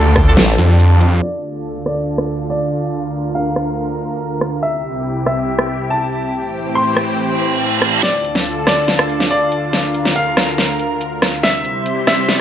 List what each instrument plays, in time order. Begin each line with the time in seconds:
Already playing: detuned saw bass D2, analog synth pad D3 D4 F4 G4, grand piano A4
0.16 kick, cross-stick, closed hi-hat
0.27 brass ensemble D4 F4 A4
0.37 wobble bass A1, brass ensemble D4 F4 A4, snare, closed hi-hat
0.58 detuned saw bass F2, closed hi-hat
0.80 closed hi-hat
1.01 closed hi-hat
1.22 analog synth pad D2 D3 F4 A4, grand piano D5, crash, downlifter
1.86 grand piano D5, cross-stick
2.18 cross-stick
2.50 grand piano D5
2.92 analog synth pad D2 A#4
3.35 grand piano F5
3.56 cross-stick
4.41 cross-stick
4.63 analog synth pad C2 C3 E4 G4, grand piano E5
5.26 grand piano E5, cross-stick
5.59 cross-stick
5.90 grand piano A5
6.33 analog synth pad A2 E3 C4 G4
6.75 grand piano C6
6.97 cross-stick
7.18 reverse cymbal
7.82 cross-stick
8.03 analog synth pad D2 D3 F4 A4, grand piano D5, snare, closed hi-hat
8.24 closed hi-hat
8.35 snare
8.46 closed hi-hat
8.67 grand piano D5, cross-stick, snare, closed hi-hat
8.88 snare, closed hi-hat
8.99 cross-stick
9.09 closed hi-hat
9.20 snare
9.31 grand piano D5, closed hi-hat
9.52 closed hi-hat
9.73 analog synth pad D2 A#4, snare, closed hi-hat
9.94 closed hi-hat
10.05 snare
10.16 grand piano F5, closed hi-hat
10.37 cross-stick, snare, closed hi-hat
10.58 snare, closed hi-hat
10.80 closed hi-hat
11.01 closed hi-hat
11.22 cross-stick, snare, closed hi-hat
11.43 analog synth pad C3 G3 E4 C5, grand piano E5, snare, closed hi-hat
11.65 closed hi-hat
11.86 closed hi-hat
12.07 grand piano E5, cross-stick, snare, closed hi-hat
12.29 snare, closed hi-hat